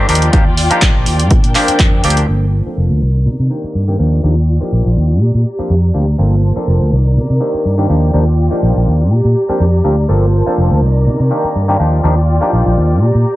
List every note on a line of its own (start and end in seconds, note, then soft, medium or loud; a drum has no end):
0.09 0.29 D#2 medium
0.09 0.30 F3 medium
0.09 0.31 A#3 medium
0.09 0.31 D4 medium
0.09 0.31 D#4 medium
0.09 1.30 F4 medium
0.09 0.31 G4 medium
0.09 1.30 D5 medium
0.09 1.29 G5 medium
0.09 open hi-hat loud
0.15 closed hi-hat medium
0.22 closed hi-hat medium
0.33 0.67 D#2 loud
0.33 0.44 F3 medium
0.33 0.44 A#3 medium
0.33 0.44 D4 medium
0.33 0.44 D#4 medium
0.33 0.44 G4 loud
0.33 kick loud
0.33 closed hi-hat medium
0.57 open hi-hat loud
0.70 1.29 F3 medium
0.70 1.29 A#3 medium
0.70 1.30 D4 medium
0.70 1.30 D#4 medium
0.70 1.30 G4 medium
0.70 muted fingered electric bass stroke soft
0.70 closed hi-hat medium
0.82 0.93 A#1 medium
0.82 kick loud
0.82 clap loud
0.82 closed hi-hat medium
0.95 1.04 A#1 medium
1.06 1.31 D#2 medium
1.06 open hi-hat loud
1.20 closed hi-hat medium
1.31 1.42 A#2 loud
1.31 2.27 D4 medium
1.31 2.27 A#4 medium
1.31 2.27 G5 medium
1.31 kick loud
1.31 closed hi-hat medium
1.44 1.53 A#2 loud
1.44 closed hi-hat soft
1.55 2.01 F3 medium
1.55 2.01 A#3 medium
1.55 2.01 C4 medium
1.55 2.01 D4 medium
1.55 2.02 G4 medium
1.55 clap medium
1.55 open hi-hat loud
1.68 muted fingered electric bass stroke soft
1.68 closed hi-hat medium
1.79 2.00 F2 medium
1.79 kick loud
1.79 clap loud
1.79 closed hi-hat medium
2.04 2.24 D2 medium
2.04 2.26 F3 medium
2.04 2.26 A#3 medium
2.04 2.26 C4 medium
2.04 2.26 D4 medium
2.04 2.26 G4 medium
2.04 open hi-hat loud
2.10 closed hi-hat medium
2.17 closed hi-hat medium
2.28 2.62 G1 medium
2.28 2.45 F3 medium
2.28 2.45 A#3 medium
2.28 3.01 A#3 medium
2.28 2.45 C4 medium
2.28 2.45 D4 medium
2.28 3.01 F4 medium
2.28 3.01 C5 medium
2.28 3.01 A5 medium
2.28 crash medium
2.66 3.00 F3 medium
2.66 3.00 A#3 medium
2.66 3.00 C4 medium
2.66 3.00 D4 medium
2.66 3.01 A4 medium
2.66 muted fingered electric bass stroke soft
2.77 2.88 F1 medium
2.90 2.99 D2 medium
3.01 3.27 C2 medium
3.01 3.98 D#3 medium
3.01 6.15 D5 medium
3.01 3.98 A#5 medium
3.26 3.37 C3 medium
3.39 3.48 C3 medium
3.50 3.85 D#3 medium
3.50 3.85 A#3 medium
3.50 3.85 C4 medium
3.50 3.85 D4 medium
3.50 3.85 G4 medium
3.64 muted fingered electric bass stroke soft
3.75 3.95 G2 medium
3.88 3.96 D#3 medium
3.88 3.96 A#3 medium
3.88 3.97 C4 medium
3.88 3.97 D4 medium
3.88 3.97 G4 medium
3.99 4.19 D#2 medium
3.99 4.21 F3 medium
3.99 4.21 A#3 medium
3.99 4.21 D4 medium
3.99 4.21 D#4 medium
3.99 5.20 F4 medium
3.99 4.21 G4 medium
3.99 5.20 G5 medium
4.23 4.57 D#2 medium
4.23 4.34 F3 medium
4.23 4.34 A#3 medium
4.23 4.35 D4 medium
4.23 4.35 D#4 medium
4.23 4.35 G4 medium
4.60 5.19 F3 medium
4.60 5.20 A#3 medium
4.60 5.20 D4 medium
4.60 5.20 D#4 medium
4.60 5.20 G4 medium
4.60 muted fingered electric bass stroke soft
4.72 4.83 A#1 medium
4.86 4.95 A#1 medium
4.96 5.21 D#2 medium
5.21 5.32 A#2 medium
5.21 6.18 G4 medium
5.21 6.18 A#5 medium
5.34 5.43 A#2 medium
5.58 5.74 F3 medium
5.58 5.74 A#3 medium
5.58 5.74 C4 medium
5.58 5.74 D4 medium
5.58 5.74 G4 medium
5.58 muted fingered electric bass stroke soft
5.70 5.90 F2 medium
5.94 6.14 D2 medium
5.94 6.05 F3 medium
5.94 6.05 A#3 medium
5.94 6.05 C4 medium
5.94 6.05 D4 medium
5.94 6.05 G4 medium
6.18 6.52 G1 medium
6.18 6.35 F3 medium
6.18 6.35 A#3 medium
6.18 6.91 A#3 medium
6.18 6.35 C4 medium
6.18 6.35 D4 medium
6.18 6.91 F4 medium
6.18 6.36 A4 medium
6.18 6.91 C5 medium
6.18 6.91 A5 medium
6.56 6.90 F3 medium
6.56 6.90 A#3 medium
6.56 6.90 C4 medium
6.56 6.91 D4 medium
6.56 6.91 A4 medium
6.56 muted fingered electric bass stroke soft
6.67 6.78 F1 medium
6.81 6.90 D2 medium
6.92 7.18 C2 medium
6.92 7.89 D#3 medium
6.92 9.09 D5 medium
6.92 7.89 A#5 medium
7.16 7.27 C3 medium
7.30 7.39 C3 medium
7.40 7.75 D#3 medium
7.40 7.75 A#3 medium
7.40 7.75 C4 medium
7.40 7.75 D4 medium
7.40 7.75 G4 medium
7.54 muted fingered electric bass stroke soft
7.65 7.85 G2 medium
7.78 7.87 D#3 medium
7.78 7.87 A#3 medium
7.78 7.87 C4 medium
7.78 7.87 D4 medium
7.78 7.87 G4 medium
7.89 8.09 D#2 medium
7.89 8.11 F3 medium
7.89 8.11 A#3 medium
7.89 8.11 D4 medium
7.89 8.11 D#4 medium
7.89 9.10 F4 medium
7.89 8.11 G4 medium
7.89 9.10 G5 medium
8.13 8.47 D#2 medium
8.13 8.24 F3 medium
8.13 8.25 A#3 medium
8.13 8.25 D4 medium
8.13 8.25 D#4 medium
8.13 8.25 G4 medium
8.51 9.10 F3 medium
8.51 9.10 A#3 medium
8.51 9.10 D4 medium
8.51 9.10 D#4 medium
8.51 9.10 G4 medium
8.51 muted fingered electric bass stroke soft
8.63 8.73 A#1 medium
8.76 8.85 A#1 medium
8.87 9.11 D#2 medium
9.11 9.22 A#2 medium
9.11 10.08 G4 medium
9.11 10.08 D5 medium
9.11 10.08 A#5 medium
9.24 9.33 A#2 medium
9.49 9.64 F3 medium
9.49 9.64 A#3 medium
9.49 9.64 C4 medium
9.49 9.65 D4 medium
9.49 9.65 G4 medium
9.49 muted fingered electric bass stroke soft
9.60 9.80 F2 medium
9.84 10.04 D2 medium
9.84 9.95 F3 medium
9.84 9.95 A#3 medium
9.84 9.95 C4 medium
9.84 9.96 D4 medium
9.84 9.96 G4 medium
10.09 10.42 G1 medium
10.09 10.26 F3 medium
10.09 10.26 A#3 medium
10.09 10.81 A#3 medium
10.09 10.26 C4 medium
10.09 10.26 D4 medium
10.09 10.82 F4 medium
10.09 10.26 A4 medium
10.09 10.81 C5 medium
10.09 10.81 A5 medium
10.46 10.81 F3 medium
10.46 10.81 A#3 medium
10.46 10.81 C4 medium
10.46 10.81 D4 medium
10.46 10.81 A4 medium
10.46 muted fingered electric bass stroke soft
10.58 10.68 F1 medium
10.71 10.80 D2 medium
10.82 11.08 C2 medium
10.82 11.79 D#3 medium
10.82 13.36 D5 medium
10.82 11.79 A#5 medium
11.06 11.17 C3 medium
11.20 11.29 C3 medium
11.31 11.65 D#3 medium
11.31 11.65 A#3 medium
11.31 11.65 C4 medium
11.31 11.66 D4 medium
11.31 11.66 G4 medium
11.44 muted fingered electric bass stroke soft
11.55 11.75 G2 medium
11.68 11.77 D#3 medium
11.68 11.77 A#3 medium
11.68 11.77 C4 medium
11.68 11.77 D4 medium
11.68 11.77 G4 loud
11.79 12.00 D#2 medium
11.79 12.01 F3 medium
11.79 12.01 A#3 medium
11.79 12.01 D4 medium
11.79 12.01 D#4 medium
11.79 13.01 F4 medium
11.79 12.02 G4 medium
11.79 13.01 G5 medium
12.04 12.38 D#2 medium
12.04 12.15 F3 medium
12.04 12.15 A#3 medium
12.04 12.15 D4 medium
12.04 12.15 D#4 medium
12.04 12.15 G4 medium
12.41 13.00 F3 medium
12.41 13.00 A#3 medium
12.41 13.00 D4 medium
12.41 13.01 D#4 medium
12.41 13.01 G4 medium
12.41 muted fingered electric bass stroke soft
12.53 12.63 A#1 medium
12.66 12.75 A#1 medium
12.77 13.01 D#2 medium
13.01 13.12 A#2 loud
13.01 13.36 G4 medium
13.01 13.36 A#5 medium
13.15 13.24 A#2 medium